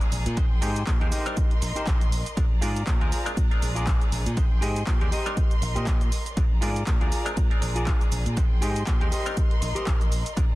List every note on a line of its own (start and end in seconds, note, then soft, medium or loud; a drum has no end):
0.00 0.34 G#3 medium
0.00 0.34 C4 medium
0.00 0.35 D4 medium
0.00 0.35 F4 medium
0.00 1.09 G#4 medium
0.00 0.35 A#4 loud
0.00 0.35 D5 medium
0.00 0.35 A#5 medium
0.00 closed hi-hat soft
0.00 sub drop medium
0.00 shaker soft
0.12 0.24 A#1 medium
0.12 open hi-hat loud
0.12 shaker medium
0.25 0.35 A#2 loud
0.25 muted clean electric guitar stroke soft
0.25 closed hi-hat medium
0.25 shaker soft
0.37 0.58 A#1 loud
0.37 0.45 G#3 medium
0.37 0.45 C4 medium
0.37 0.45 D#4 medium
0.37 0.45 G4 medium
0.37 0.45 C5 medium
0.37 1.11 G5 medium
0.37 1.11 C6 medium
0.37 kick loud
0.37 closed hi-hat medium
0.37 shaker soft
0.61 0.83 G#2 medium
0.61 0.70 G#3 medium
0.61 0.70 C4 medium
0.61 0.81 D#4 loud
0.61 0.70 D#4 medium
0.61 0.82 G4 loud
0.61 0.70 G4 medium
0.61 0.82 G#4 loud
0.61 0.70 A#4 medium
0.61 0.82 C5 loud
0.61 open hi-hat loud
0.61 shaker medium
0.76 closed hi-hat medium
0.76 shaker soft
0.87 0.99 A#2 medium
0.87 kick loud
0.87 clap loud
0.87 closed hi-hat medium
0.87 shaker soft
1.00 1.10 D#2 loud
1.00 1.07 G#3 medium
1.00 1.07 C4 medium
1.00 1.10 D#4 medium
1.00 1.08 D#4 medium
1.00 1.11 G4 medium
1.00 1.08 G4 medium
1.00 1.12 G#4 medium
1.00 1.08 A#4 loud
1.00 1.12 C5 loud
1.00 closed hi-hat soft
1.11 1.53 D#4 loud
1.11 1.53 G4 medium
1.11 2.36 A#4 medium
1.11 1.53 A#4 medium
1.11 1.54 C5 loud
1.11 2.36 D#5 medium
1.11 2.36 C6 medium
1.11 open hi-hat loud
1.11 shaker medium
1.26 1.36 G3 loud
1.26 1.36 C4 loud
1.26 1.36 D4 medium
1.26 1.36 D#4 medium
1.26 1.37 A#4 loud
1.26 closed hi-hat medium
1.26 shaker soft
1.37 kick loud
1.37 closed hi-hat medium
1.37 shaker soft
1.51 closed hi-hat soft
1.61 1.74 A#1 medium
1.61 muted clean electric guitar stroke loud
1.61 open hi-hat loud
1.61 shaker medium
1.75 2.01 D#4 medium
1.75 2.01 G4 medium
1.75 2.01 A#4 medium
1.75 2.02 C5 loud
1.75 closed hi-hat medium
1.75 shaker soft
1.87 2.22 A#1 medium
1.87 kick loud
1.87 clap loud
1.87 closed hi-hat medium
1.87 shaker soft
2.01 closed hi-hat soft
2.01 shaker soft
2.12 open hi-hat loud
2.12 shaker medium
2.25 muted clean electric guitar stroke soft
2.25 closed hi-hat medium
2.25 shaker soft
2.37 2.58 A#1 loud
2.37 2.45 G#3 medium
2.37 2.45 C4 medium
2.37 2.45 D4 medium
2.37 2.45 F4 medium
2.37 5.09 G#4 medium
2.37 2.45 A#4 medium
2.37 4.35 D5 medium
2.37 4.35 A#5 loud
2.37 kick loud
2.37 closed hi-hat medium
2.37 shaker soft
2.61 2.83 G#2 medium
2.61 2.70 G#3 medium
2.61 2.70 C4 medium
2.61 2.70 D4 medium
2.61 2.81 F4 loud
2.61 2.70 F4 medium
2.61 2.81 G#4 loud
2.61 2.82 A#4 loud
2.61 2.70 A#4 medium
2.61 2.82 D5 loud
2.61 open hi-hat loud
2.61 shaker medium
2.76 closed hi-hat medium
2.76 shaker soft
2.87 2.99 A#2 medium
2.87 kick loud
2.87 clap loud
2.87 closed hi-hat medium
2.87 shaker soft
3.00 3.10 D2 loud
3.00 3.07 G#3 medium
3.00 3.07 C4 medium
3.00 3.07 D4 medium
3.00 3.31 F4 medium
3.00 3.08 F4 medium
3.00 3.31 G#4 medium
3.00 3.32 A#4 medium
3.00 3.08 A#4 medium
3.00 3.32 C5 loud
3.00 closed hi-hat soft
3.12 open hi-hat loud
3.12 shaker medium
3.26 3.36 G#3 loud
3.26 3.36 C4 loud
3.26 3.36 D4 medium
3.26 3.36 F4 loud
3.26 3.36 A#4 loud
3.26 closed hi-hat medium
3.26 shaker soft
3.37 3.49 A#2 loud
3.37 kick loud
3.37 closed hi-hat medium
3.37 shaker soft
3.51 3.84 G#3 medium
3.51 3.84 C4 medium
3.51 3.84 D4 medium
3.51 3.85 F4 medium
3.51 3.85 A#4 medium
3.51 closed hi-hat soft
3.61 3.97 A#1 medium
3.61 muted clean electric guitar stroke loud
3.61 open hi-hat loud
3.61 shaker medium
3.75 4.01 F4 medium
3.75 4.01 G#4 medium
3.75 4.01 A#4 medium
3.75 4.02 D5 loud
3.75 closed hi-hat medium
3.75 shaker soft
3.87 4.34 G#3 medium
3.87 4.34 C4 medium
3.87 4.34 D4 medium
3.87 4.35 F4 medium
3.87 4.35 A#4 loud
3.87 kick loud
3.87 clap loud
3.87 closed hi-hat medium
3.87 shaker soft
4.01 closed hi-hat soft
4.01 shaker soft
4.12 4.24 A#1 medium
4.12 open hi-hat loud
4.12 shaker medium
4.25 4.35 A#2 loud
4.25 muted clean electric guitar stroke soft
4.25 closed hi-hat medium
4.25 shaker soft
4.37 4.58 A#1 medium
4.37 4.45 G#3 medium
4.37 4.45 C4 medium
4.37 4.45 D#4 medium
4.37 4.45 G4 medium
4.37 4.45 C5 medium
4.37 5.11 G5 medium
4.37 6.35 C6 loud
4.37 kick loud
4.37 closed hi-hat medium
4.37 shaker soft
4.61 4.83 G#2 medium
4.61 4.70 G#3 medium
4.61 4.70 C4 medium
4.61 4.70 D#4 medium
4.61 4.81 G4 loud
4.61 4.70 G4 medium
4.61 4.81 G#4 loud
4.61 4.70 A#4 medium
4.61 4.82 C5 loud
4.61 4.82 D#5 loud
4.61 open hi-hat loud
4.61 shaker medium
4.76 closed hi-hat medium
4.76 shaker soft
4.87 4.99 A#2 medium
4.87 kick loud
4.87 clap loud
4.87 closed hi-hat medium
4.87 shaker soft
5.00 5.10 D#2 loud
5.00 5.07 G#3 medium
5.00 5.07 C4 medium
5.00 5.07 D#4 medium
5.00 5.10 G4 medium
5.00 5.08 G4 medium
5.00 5.12 G#4 medium
5.00 5.08 A#4 loud
5.00 5.11 C5 medium
5.00 5.12 D5 medium
5.00 closed hi-hat soft
5.11 5.53 G4 medium
5.11 5.53 A#4 medium
5.11 6.36 A#4 medium
5.11 5.54 C5 medium
5.11 6.36 D#5 medium
5.11 5.54 D#5 loud
5.11 open hi-hat loud
5.11 shaker medium
5.26 5.36 G3 loud
5.26 5.36 C4 medium
5.26 5.36 D4 medium
5.26 5.36 D#4 medium
5.26 5.37 A#4 loud
5.26 closed hi-hat medium
5.26 shaker soft
5.37 kick loud
5.37 closed hi-hat medium
5.37 shaker soft
5.51 closed hi-hat soft
5.51 shaker soft
5.61 5.73 A#1 medium
5.61 muted clean electric guitar stroke loud
5.61 open hi-hat loud
5.61 shaker medium
5.75 6.09 A#2 medium
5.75 6.01 G4 medium
5.75 6.01 A#4 medium
5.75 6.01 C5 medium
5.75 6.02 D#5 loud
5.75 closed hi-hat soft
5.75 shaker soft
5.87 kick loud
5.87 clap loud
5.87 closed hi-hat medium
5.87 shaker soft
6.01 closed hi-hat soft
6.01 shaker soft
6.12 open hi-hat loud
6.12 shaker medium
6.25 muted clean electric guitar stroke soft
6.25 closed hi-hat medium
6.25 shaker soft
6.37 6.58 A#1 loud
6.37 6.45 G#3 medium
6.37 6.45 C4 medium
6.37 6.45 D4 medium
6.37 6.45 F4 medium
6.37 9.09 G#4 medium
6.37 6.45 A#4 medium
6.37 8.35 D5 medium
6.37 8.35 A#5 medium
6.37 kick loud
6.37 closed hi-hat medium
6.37 shaker soft
6.61 6.83 G#2 medium
6.61 6.70 G#3 medium
6.61 6.70 C4 medium
6.61 6.70 D4 medium
6.61 6.81 F4 loud
6.61 6.70 F4 medium
6.61 6.81 G#4 loud
6.61 6.70 A#4 medium
6.61 6.82 A#4 loud
6.61 6.82 D5 loud
6.61 open hi-hat loud
6.61 shaker medium
6.76 closed hi-hat medium
6.76 shaker soft
6.87 6.98 A#2 medium
6.87 kick loud
6.87 clap loud
6.87 closed hi-hat medium
6.87 shaker soft
7.00 7.10 D2 loud
7.00 7.07 G#3 medium
7.00 7.07 C4 medium
7.00 7.07 D4 medium
7.00 7.31 F4 medium
7.00 7.08 F4 medium
7.00 7.31 G#4 medium
7.00 7.08 A#4 medium
7.00 7.32 A#4 medium
7.00 7.32 D5 loud
7.00 closed hi-hat soft
7.12 open hi-hat loud
7.12 shaker medium
7.25 7.36 G#3 loud
7.25 7.36 C4 medium
7.25 7.36 D4 medium
7.25 7.36 F4 medium
7.25 7.36 A#4 loud
7.25 closed hi-hat soft
7.25 shaker soft
7.37 7.49 A#2 loud
7.37 kick loud
7.37 closed hi-hat medium
7.37 shaker soft
7.50 7.84 G#3 medium
7.50 7.84 C4 medium
7.50 7.84 D4 medium
7.50 7.84 F4 medium
7.50 7.85 A#4 medium
7.50 closed hi-hat soft
7.61 7.97 A#1 medium
7.61 muted clean electric guitar stroke loud
7.61 open hi-hat loud
7.61 shaker medium
7.75 8.01 F4 medium
7.75 8.01 G#4 medium
7.75 8.01 A#4 medium
7.75 8.02 D5 loud
7.75 closed hi-hat medium
7.75 shaker soft
7.87 8.34 G#3 medium
7.87 8.34 C4 medium
7.87 8.34 D4 medium
7.87 8.34 F4 medium
7.87 8.35 A#4 loud
7.87 kick loud
7.87 clap loud
7.87 closed hi-hat medium
7.87 shaker soft
8.01 closed hi-hat soft
8.01 shaker soft
8.12 8.23 A#1 medium
8.12 open hi-hat loud
8.12 shaker medium
8.26 8.35 A#2 loud
8.26 muted clean electric guitar stroke soft
8.26 closed hi-hat medium
8.26 shaker soft
8.37 8.58 A#1 loud
8.37 8.45 G#3 medium
8.37 8.45 C4 medium
8.37 8.45 D#4 medium
8.37 8.45 G4 medium
8.37 8.45 C5 medium
8.37 9.11 G5 medium
8.37 10.35 C6 loud
8.37 kick loud
8.37 closed hi-hat medium
8.37 shaker soft
8.61 8.83 G#2 medium
8.61 8.70 G#3 medium
8.61 8.70 C4 medium
8.61 8.70 D#4 medium
8.61 8.81 G4 loud
8.61 8.70 G4 medium
8.61 8.82 G#4 loud
8.61 8.70 A#4 medium
8.61 8.82 C5 loud
8.61 8.82 D#5 loud
8.61 open hi-hat loud
8.61 shaker medium
8.76 closed hi-hat medium
8.76 shaker soft
8.87 8.99 A#2 medium
8.87 kick loud
8.87 clap loud
8.87 closed hi-hat medium
8.87 shaker soft
9.00 9.10 D#2 loud
9.00 9.07 G#3 medium
9.00 9.07 C4 medium
9.00 9.07 D#4 medium
9.00 9.10 G4 medium
9.00 9.08 G4 medium
9.00 9.12 G#4 medium
9.00 9.08 A#4 loud
9.00 9.11 C5 medium
9.00 9.12 D#5 medium
9.00 closed hi-hat soft
9.11 9.53 G4 medium
9.11 9.53 A#4 medium
9.11 10.36 A#4 medium
9.11 9.54 C5 medium
9.11 10.36 D#5 medium
9.11 9.54 D#5 loud
9.11 open hi-hat loud
9.11 shaker medium
9.26 9.36 G3 loud
9.26 9.36 C4 medium
9.26 9.36 D4 medium
9.26 9.36 D#4 medium
9.26 9.36 A#4 loud
9.26 closed hi-hat soft
9.26 shaker soft
9.37 kick loud
9.37 closed hi-hat medium
9.37 shaker soft
9.51 closed hi-hat soft
9.61 9.74 A#1 loud
9.61 muted clean electric guitar stroke loud
9.61 open hi-hat loud
9.61 shaker medium
9.75 10.01 G4 medium
9.75 10.01 A#4 medium
9.75 10.01 C5 medium
9.75 10.02 D#5 loud
9.75 muted fingered electric bass stroke soft
9.75 closed hi-hat medium
9.75 shaker soft
9.87 10.22 A#1 medium
9.87 kick loud
9.87 clap loud
9.87 closed hi-hat medium
9.87 shaker soft
10.01 closed hi-hat soft
10.01 shaker soft
10.12 open hi-hat loud
10.12 shaker medium
10.25 muted clean electric guitar stroke soft
10.25 closed hi-hat medium
10.25 shaker soft
10.37 10.55 A#1 loud
10.37 10.45 G#3 medium
10.37 10.45 C4 medium
10.37 10.45 D4 medium
10.37 10.45 F4 medium
10.37 10.55 G#4 medium
10.37 10.45 A#4 medium
10.37 10.55 D5 medium
10.37 10.55 A#5 loud
10.37 kick loud
10.37 closed hi-hat medium
10.37 shaker soft